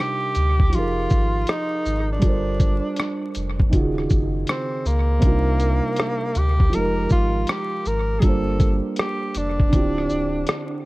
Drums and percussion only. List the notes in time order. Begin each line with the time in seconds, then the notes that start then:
0.00 cross-stick
0.35 closed hi-hat, shaker
0.60 kick
0.73 closed hi-hat
1.10 kick, shaker
1.47 cross-stick, closed hi-hat
1.86 shaker
2.22 kick, closed hi-hat
2.60 kick, closed hi-hat, shaker
2.96 cross-stick, closed hi-hat
3.35 closed hi-hat, shaker
3.60 kick
3.73 kick, closed hi-hat
3.98 cross-stick
4.10 kick, shaker
4.47 cross-stick, closed hi-hat
4.86 shaker
5.22 kick, closed hi-hat
5.60 closed hi-hat, shaker
5.96 cross-stick, closed hi-hat
6.35 closed hi-hat, shaker
6.60 kick
6.73 closed hi-hat
7.09 kick, shaker
7.47 cross-stick, closed hi-hat
7.85 shaker
8.22 kick, closed hi-hat
8.60 kick, closed hi-hat, shaker
8.96 cross-stick, closed hi-hat
9.35 closed hi-hat, shaker
9.60 kick
9.73 kick, closed hi-hat
9.98 cross-stick
10.09 shaker
10.47 cross-stick, closed hi-hat